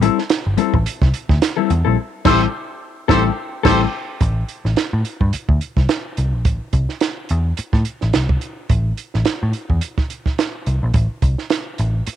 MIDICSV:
0, 0, Header, 1, 6, 480
1, 0, Start_track
1, 0, Key_signature, 0, "minor"
1, 0, Tempo, 560224
1, 1693, Time_signature, 4, 2, 24, 8
1, 10421, End_track
2, 0, Start_track
2, 0, Title_t, "Horn section"
2, 0, Program_c, 0, 61
2, 1936, Note_on_c, 0, 67, 95
2, 1936, Note_on_c, 0, 72, 99
2, 1937, Note_on_c, 0, 69, 94
2, 2060, Note_off_c, 0, 67, 0
2, 2061, Note_off_c, 0, 69, 0
2, 2061, Note_off_c, 0, 72, 0
2, 2650, Note_on_c, 0, 72, 92
2, 2651, Note_on_c, 0, 67, 89
2, 2655, Note_on_c, 0, 69, 96
2, 2776, Note_off_c, 0, 67, 0
2, 2776, Note_off_c, 0, 72, 0
2, 2779, Note_off_c, 0, 69, 0
2, 3130, Note_on_c, 0, 67, 101
2, 3130, Note_on_c, 0, 69, 97
2, 3132, Note_on_c, 0, 72, 102
2, 3255, Note_off_c, 0, 69, 0
2, 3256, Note_off_c, 0, 67, 0
2, 3257, Note_off_c, 0, 72, 0
2, 10421, End_track
3, 0, Start_track
3, 0, Title_t, "Clean electric guitar"
3, 0, Program_c, 1, 27
3, 12, Note_on_c, 1, 55, 88
3, 19, Note_on_c, 1, 60, 98
3, 24, Note_on_c, 1, 64, 96
3, 24, Note_on_c, 1, 69, 98
3, 155, Note_off_c, 1, 55, 0
3, 158, Note_off_c, 1, 60, 0
3, 161, Note_off_c, 1, 64, 0
3, 161, Note_off_c, 1, 69, 0
3, 491, Note_on_c, 1, 55, 81
3, 496, Note_on_c, 1, 60, 85
3, 498, Note_on_c, 1, 64, 84
3, 500, Note_on_c, 1, 69, 99
3, 633, Note_off_c, 1, 55, 0
3, 635, Note_off_c, 1, 60, 0
3, 637, Note_off_c, 1, 64, 0
3, 638, Note_off_c, 1, 69, 0
3, 1341, Note_on_c, 1, 69, 69
3, 1347, Note_on_c, 1, 60, 61
3, 1347, Note_on_c, 1, 64, 81
3, 1352, Note_on_c, 1, 55, 72
3, 1456, Note_off_c, 1, 69, 0
3, 1459, Note_off_c, 1, 60, 0
3, 1459, Note_off_c, 1, 64, 0
3, 1461, Note_off_c, 1, 55, 0
3, 1582, Note_on_c, 1, 69, 72
3, 1584, Note_on_c, 1, 64, 66
3, 1587, Note_on_c, 1, 60, 58
3, 1592, Note_on_c, 1, 55, 52
3, 1671, Note_off_c, 1, 69, 0
3, 1672, Note_off_c, 1, 64, 0
3, 1674, Note_off_c, 1, 60, 0
3, 1676, Note_off_c, 1, 55, 0
3, 1928, Note_on_c, 1, 55, 103
3, 1928, Note_on_c, 1, 60, 101
3, 1932, Note_on_c, 1, 64, 101
3, 1937, Note_on_c, 1, 69, 100
3, 2097, Note_off_c, 1, 60, 0
3, 2098, Note_off_c, 1, 55, 0
3, 2100, Note_off_c, 1, 64, 0
3, 2103, Note_off_c, 1, 69, 0
3, 2641, Note_on_c, 1, 69, 102
3, 2644, Note_on_c, 1, 60, 109
3, 2646, Note_on_c, 1, 64, 106
3, 2652, Note_on_c, 1, 55, 98
3, 2813, Note_off_c, 1, 69, 0
3, 2814, Note_off_c, 1, 60, 0
3, 2815, Note_off_c, 1, 64, 0
3, 2819, Note_off_c, 1, 55, 0
3, 3114, Note_on_c, 1, 69, 108
3, 3121, Note_on_c, 1, 64, 106
3, 3125, Note_on_c, 1, 60, 102
3, 3126, Note_on_c, 1, 55, 103
3, 3288, Note_off_c, 1, 69, 0
3, 3293, Note_off_c, 1, 64, 0
3, 3295, Note_off_c, 1, 55, 0
3, 3295, Note_off_c, 1, 60, 0
3, 10421, End_track
4, 0, Start_track
4, 0, Title_t, "Picked electric bass"
4, 0, Program_c, 2, 34
4, 398, Note_on_c, 2, 31, 80
4, 476, Note_off_c, 2, 31, 0
4, 634, Note_on_c, 2, 33, 101
4, 713, Note_off_c, 2, 33, 0
4, 871, Note_on_c, 2, 36, 103
4, 951, Note_off_c, 2, 36, 0
4, 1108, Note_on_c, 2, 38, 80
4, 1188, Note_off_c, 2, 38, 0
4, 1460, Note_on_c, 2, 40, 96
4, 1559, Note_off_c, 2, 40, 0
4, 1597, Note_on_c, 2, 34, 87
4, 1673, Note_off_c, 2, 34, 0
4, 1934, Note_on_c, 2, 33, 115
4, 2101, Note_off_c, 2, 33, 0
4, 2651, Note_on_c, 2, 33, 112
4, 2819, Note_off_c, 2, 33, 0
4, 3128, Note_on_c, 2, 33, 113
4, 3296, Note_off_c, 2, 33, 0
4, 3609, Note_on_c, 2, 33, 91
4, 3790, Note_off_c, 2, 33, 0
4, 3984, Note_on_c, 2, 33, 78
4, 4064, Note_off_c, 2, 33, 0
4, 4226, Note_on_c, 2, 45, 81
4, 4305, Note_off_c, 2, 45, 0
4, 4464, Note_on_c, 2, 43, 88
4, 4543, Note_off_c, 2, 43, 0
4, 4703, Note_on_c, 2, 38, 77
4, 4783, Note_off_c, 2, 38, 0
4, 4942, Note_on_c, 2, 36, 68
4, 5023, Note_off_c, 2, 36, 0
4, 5296, Note_on_c, 2, 36, 81
4, 5431, Note_off_c, 2, 36, 0
4, 5431, Note_on_c, 2, 34, 69
4, 5530, Note_off_c, 2, 34, 0
4, 5530, Note_on_c, 2, 33, 88
4, 5632, Note_off_c, 2, 33, 0
4, 5770, Note_on_c, 2, 36, 82
4, 5872, Note_off_c, 2, 36, 0
4, 6261, Note_on_c, 2, 40, 101
4, 6440, Note_off_c, 2, 40, 0
4, 6626, Note_on_c, 2, 45, 85
4, 6707, Note_off_c, 2, 45, 0
4, 6876, Note_on_c, 2, 33, 75
4, 6953, Note_off_c, 2, 33, 0
4, 6985, Note_on_c, 2, 36, 86
4, 7163, Note_off_c, 2, 36, 0
4, 7454, Note_on_c, 2, 33, 86
4, 7636, Note_off_c, 2, 33, 0
4, 7840, Note_on_c, 2, 33, 73
4, 7917, Note_off_c, 2, 33, 0
4, 8078, Note_on_c, 2, 45, 81
4, 8155, Note_off_c, 2, 45, 0
4, 8310, Note_on_c, 2, 40, 85
4, 8391, Note_off_c, 2, 40, 0
4, 9142, Note_on_c, 2, 36, 83
4, 9242, Note_off_c, 2, 36, 0
4, 9279, Note_on_c, 2, 34, 79
4, 9357, Note_off_c, 2, 34, 0
4, 9375, Note_on_c, 2, 33, 89
4, 9479, Note_off_c, 2, 33, 0
4, 9618, Note_on_c, 2, 36, 83
4, 9720, Note_off_c, 2, 36, 0
4, 10106, Note_on_c, 2, 33, 91
4, 10285, Note_off_c, 2, 33, 0
4, 10421, End_track
5, 0, Start_track
5, 0, Title_t, "Muted picked electric bass strokes"
5, 4090, Note_on_c, 9, 29, 42
5, 4176, Note_off_c, 9, 29, 0
5, 4575, Note_on_c, 9, 29, 42
5, 4661, Note_off_c, 9, 29, 0
5, 6501, Note_on_c, 9, 29, 47
5, 6587, Note_off_c, 9, 29, 0
5, 7944, Note_on_c, 9, 29, 41
5, 8030, Note_off_c, 9, 29, 0
5, 10346, Note_on_c, 9, 29, 49
5, 10421, Note_off_c, 9, 29, 0
5, 10421, End_track
6, 0, Start_track
6, 0, Title_t, "Drums"
6, 20, Note_on_c, 9, 42, 66
6, 106, Note_off_c, 9, 42, 0
6, 158, Note_on_c, 9, 38, 42
6, 244, Note_off_c, 9, 38, 0
6, 253, Note_on_c, 9, 42, 91
6, 259, Note_on_c, 9, 38, 112
6, 339, Note_off_c, 9, 42, 0
6, 345, Note_off_c, 9, 38, 0
6, 494, Note_on_c, 9, 42, 66
6, 579, Note_off_c, 9, 42, 0
6, 631, Note_on_c, 9, 36, 80
6, 716, Note_off_c, 9, 36, 0
6, 738, Note_on_c, 9, 42, 90
6, 823, Note_off_c, 9, 42, 0
6, 871, Note_on_c, 9, 36, 83
6, 875, Note_on_c, 9, 38, 36
6, 956, Note_off_c, 9, 36, 0
6, 960, Note_off_c, 9, 38, 0
6, 974, Note_on_c, 9, 42, 75
6, 1060, Note_off_c, 9, 42, 0
6, 1108, Note_on_c, 9, 36, 84
6, 1113, Note_on_c, 9, 38, 33
6, 1194, Note_off_c, 9, 36, 0
6, 1199, Note_off_c, 9, 38, 0
6, 1215, Note_on_c, 9, 42, 102
6, 1218, Note_on_c, 9, 38, 98
6, 1301, Note_off_c, 9, 42, 0
6, 1304, Note_off_c, 9, 38, 0
6, 1458, Note_on_c, 9, 42, 68
6, 1544, Note_off_c, 9, 42, 0
6, 1927, Note_on_c, 9, 49, 87
6, 1930, Note_on_c, 9, 36, 117
6, 1933, Note_on_c, 9, 38, 102
6, 2013, Note_off_c, 9, 49, 0
6, 2015, Note_off_c, 9, 36, 0
6, 2018, Note_off_c, 9, 38, 0
6, 2649, Note_on_c, 9, 36, 110
6, 2654, Note_on_c, 9, 38, 117
6, 2735, Note_off_c, 9, 36, 0
6, 2740, Note_off_c, 9, 38, 0
6, 3126, Note_on_c, 9, 49, 82
6, 3127, Note_on_c, 9, 36, 108
6, 3131, Note_on_c, 9, 38, 112
6, 3211, Note_off_c, 9, 49, 0
6, 3213, Note_off_c, 9, 36, 0
6, 3217, Note_off_c, 9, 38, 0
6, 3604, Note_on_c, 9, 42, 76
6, 3606, Note_on_c, 9, 36, 103
6, 3690, Note_off_c, 9, 42, 0
6, 3692, Note_off_c, 9, 36, 0
6, 3843, Note_on_c, 9, 42, 58
6, 3929, Note_off_c, 9, 42, 0
6, 3987, Note_on_c, 9, 38, 35
6, 4073, Note_off_c, 9, 38, 0
6, 4083, Note_on_c, 9, 42, 69
6, 4088, Note_on_c, 9, 38, 88
6, 4168, Note_off_c, 9, 42, 0
6, 4174, Note_off_c, 9, 38, 0
6, 4326, Note_on_c, 9, 42, 64
6, 4411, Note_off_c, 9, 42, 0
6, 4462, Note_on_c, 9, 36, 71
6, 4547, Note_off_c, 9, 36, 0
6, 4566, Note_on_c, 9, 42, 83
6, 4651, Note_off_c, 9, 42, 0
6, 4701, Note_on_c, 9, 36, 76
6, 4787, Note_off_c, 9, 36, 0
6, 4807, Note_on_c, 9, 42, 67
6, 4893, Note_off_c, 9, 42, 0
6, 4941, Note_on_c, 9, 36, 72
6, 4945, Note_on_c, 9, 38, 33
6, 5027, Note_off_c, 9, 36, 0
6, 5030, Note_off_c, 9, 38, 0
6, 5046, Note_on_c, 9, 42, 74
6, 5049, Note_on_c, 9, 38, 98
6, 5131, Note_off_c, 9, 42, 0
6, 5134, Note_off_c, 9, 38, 0
6, 5288, Note_on_c, 9, 42, 68
6, 5374, Note_off_c, 9, 42, 0
6, 5525, Note_on_c, 9, 42, 78
6, 5528, Note_on_c, 9, 36, 108
6, 5611, Note_off_c, 9, 42, 0
6, 5613, Note_off_c, 9, 36, 0
6, 5765, Note_on_c, 9, 42, 64
6, 5767, Note_on_c, 9, 36, 75
6, 5850, Note_off_c, 9, 42, 0
6, 5853, Note_off_c, 9, 36, 0
6, 5904, Note_on_c, 9, 38, 36
6, 5989, Note_off_c, 9, 38, 0
6, 6003, Note_on_c, 9, 42, 77
6, 6009, Note_on_c, 9, 38, 87
6, 6088, Note_off_c, 9, 42, 0
6, 6094, Note_off_c, 9, 38, 0
6, 6246, Note_on_c, 9, 42, 63
6, 6331, Note_off_c, 9, 42, 0
6, 6487, Note_on_c, 9, 42, 84
6, 6573, Note_off_c, 9, 42, 0
6, 6622, Note_on_c, 9, 38, 31
6, 6623, Note_on_c, 9, 36, 82
6, 6708, Note_off_c, 9, 38, 0
6, 6709, Note_off_c, 9, 36, 0
6, 6726, Note_on_c, 9, 42, 67
6, 6811, Note_off_c, 9, 42, 0
6, 6864, Note_on_c, 9, 38, 30
6, 6950, Note_off_c, 9, 38, 0
6, 6969, Note_on_c, 9, 42, 83
6, 6972, Note_on_c, 9, 38, 97
6, 7055, Note_off_c, 9, 42, 0
6, 7057, Note_off_c, 9, 38, 0
6, 7106, Note_on_c, 9, 36, 97
6, 7191, Note_off_c, 9, 36, 0
6, 7208, Note_on_c, 9, 42, 60
6, 7294, Note_off_c, 9, 42, 0
6, 7450, Note_on_c, 9, 42, 80
6, 7452, Note_on_c, 9, 36, 96
6, 7536, Note_off_c, 9, 42, 0
6, 7538, Note_off_c, 9, 36, 0
6, 7690, Note_on_c, 9, 42, 64
6, 7776, Note_off_c, 9, 42, 0
6, 7831, Note_on_c, 9, 38, 38
6, 7917, Note_off_c, 9, 38, 0
6, 7925, Note_on_c, 9, 42, 79
6, 7930, Note_on_c, 9, 38, 99
6, 8010, Note_off_c, 9, 42, 0
6, 8016, Note_off_c, 9, 38, 0
6, 8167, Note_on_c, 9, 42, 61
6, 8253, Note_off_c, 9, 42, 0
6, 8308, Note_on_c, 9, 36, 64
6, 8393, Note_off_c, 9, 36, 0
6, 8408, Note_on_c, 9, 42, 83
6, 8494, Note_off_c, 9, 42, 0
6, 8548, Note_on_c, 9, 36, 82
6, 8550, Note_on_c, 9, 38, 31
6, 8634, Note_off_c, 9, 36, 0
6, 8635, Note_off_c, 9, 38, 0
6, 8654, Note_on_c, 9, 42, 66
6, 8739, Note_off_c, 9, 42, 0
6, 8789, Note_on_c, 9, 36, 76
6, 8792, Note_on_c, 9, 38, 31
6, 8875, Note_off_c, 9, 36, 0
6, 8877, Note_off_c, 9, 38, 0
6, 8898, Note_on_c, 9, 42, 83
6, 8901, Note_on_c, 9, 38, 94
6, 8984, Note_off_c, 9, 42, 0
6, 8987, Note_off_c, 9, 38, 0
6, 9138, Note_on_c, 9, 42, 60
6, 9223, Note_off_c, 9, 42, 0
6, 9371, Note_on_c, 9, 42, 76
6, 9375, Note_on_c, 9, 36, 106
6, 9456, Note_off_c, 9, 42, 0
6, 9461, Note_off_c, 9, 36, 0
6, 9614, Note_on_c, 9, 42, 64
6, 9616, Note_on_c, 9, 36, 79
6, 9700, Note_off_c, 9, 42, 0
6, 9702, Note_off_c, 9, 36, 0
6, 9754, Note_on_c, 9, 38, 39
6, 9839, Note_off_c, 9, 38, 0
6, 9851, Note_on_c, 9, 42, 77
6, 9857, Note_on_c, 9, 38, 96
6, 9937, Note_off_c, 9, 42, 0
6, 9943, Note_off_c, 9, 38, 0
6, 10096, Note_on_c, 9, 42, 64
6, 10182, Note_off_c, 9, 42, 0
6, 10338, Note_on_c, 9, 42, 86
6, 10421, Note_off_c, 9, 42, 0
6, 10421, End_track
0, 0, End_of_file